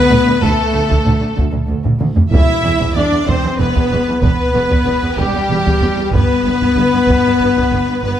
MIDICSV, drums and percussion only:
0, 0, Header, 1, 2, 480
1, 0, Start_track
1, 0, Key_signature, 1, "minor"
1, 0, Tempo, 634921
1, 320, Time_signature, 6, 3, 24, 8
1, 6198, End_track
2, 0, Start_track
2, 0, Title_t, "Taiko and cinematic ensemble drums"
2, 90, Note_on_c, 9, 45, 60
2, 165, Note_off_c, 9, 45, 0
2, 327, Note_on_c, 9, 41, 92
2, 403, Note_off_c, 9, 41, 0
2, 688, Note_on_c, 9, 41, 73
2, 763, Note_off_c, 9, 41, 0
2, 807, Note_on_c, 9, 45, 49
2, 883, Note_off_c, 9, 45, 0
2, 1049, Note_on_c, 9, 41, 70
2, 1125, Note_off_c, 9, 41, 0
2, 1165, Note_on_c, 9, 45, 41
2, 1240, Note_off_c, 9, 45, 0
2, 1401, Note_on_c, 9, 45, 76
2, 1477, Note_off_c, 9, 45, 0
2, 1518, Note_on_c, 9, 47, 79
2, 1594, Note_off_c, 9, 47, 0
2, 1642, Note_on_c, 9, 43, 81
2, 1718, Note_off_c, 9, 43, 0
2, 1766, Note_on_c, 9, 41, 84
2, 1841, Note_off_c, 9, 41, 0
2, 2125, Note_on_c, 9, 41, 66
2, 2200, Note_off_c, 9, 41, 0
2, 2479, Note_on_c, 9, 41, 70
2, 2555, Note_off_c, 9, 41, 0
2, 2843, Note_on_c, 9, 41, 66
2, 2918, Note_off_c, 9, 41, 0
2, 3197, Note_on_c, 9, 41, 77
2, 3273, Note_off_c, 9, 41, 0
2, 3563, Note_on_c, 9, 41, 66
2, 3639, Note_off_c, 9, 41, 0
2, 3929, Note_on_c, 9, 41, 62
2, 4005, Note_off_c, 9, 41, 0
2, 4287, Note_on_c, 9, 41, 70
2, 4363, Note_off_c, 9, 41, 0
2, 4648, Note_on_c, 9, 41, 81
2, 4724, Note_off_c, 9, 41, 0
2, 5002, Note_on_c, 9, 41, 64
2, 5078, Note_off_c, 9, 41, 0
2, 5368, Note_on_c, 9, 41, 60
2, 5444, Note_off_c, 9, 41, 0
2, 5725, Note_on_c, 9, 41, 61
2, 5800, Note_off_c, 9, 41, 0
2, 6198, End_track
0, 0, End_of_file